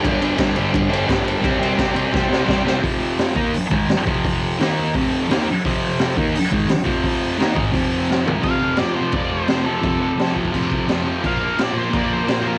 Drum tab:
CC |----------------|----------------|----------------|----------------|
RD |x-x-x-x-x-x-x-x-|x-x-x-x---------|----------------|----------------|
HH |----------------|----------------|o---o---o---o---|o---o---o---o---|
SD |----o-------o---|----o---o-o-o-o-|----o-------o---|----o-------o---|
FT |----------------|----------------|----------------|----------------|
BD |o---o---o---o---|o---o---o---o---|o-----o---o---o-|o-------o-------|

CC |----------------|----------------|x---x---x---x---|x---x---x---x---|
RD |----------------|----------------|----------------|----------------|
HH |o---o---o---o---|o---o---o-------|----------------|----------------|
SD |----o-------o---|----o-------o---|----o-------o---|----o-------o---|
FT |----------------|--------------o-|----------------|----------------|
BD |o-----o---o---o-|o-----o-o-------|o-------o-------|o-----ooo-o-----|

CC |x---x---x---x---|
RD |----------------|
HH |----------------|
SD |----o-------o---|
FT |----------------|
BD |o-------o-------|